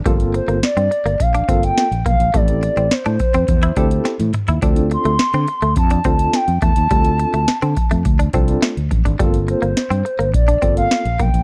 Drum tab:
HH |xxxxxxxxxxxxxxxx|xxxxxxxxxxxxxxxx|xxxxxxxxxxxxxxxx|xxxxxxxxxxxxxxxx|
SD |----o-------o---|----o-------o---|----o-------o---|----o-------o---|
T1 |----------------|-------------o--|----------------|----------------|
T2 |----------------|--------------o-|----------------|----------------|
FT |----------------|---------------o|----------------|----------------|
BD |o-------o-o---o-|o-----o-o-o-----|o-------o-o---o-|o-----o-o-o---o-|

HH |xxxxxxxxxxxxxxxx|
SD |----o-------o---|
T1 |----------------|
T2 |----------------|
FT |----------------|
BD |o-------o-o---o-|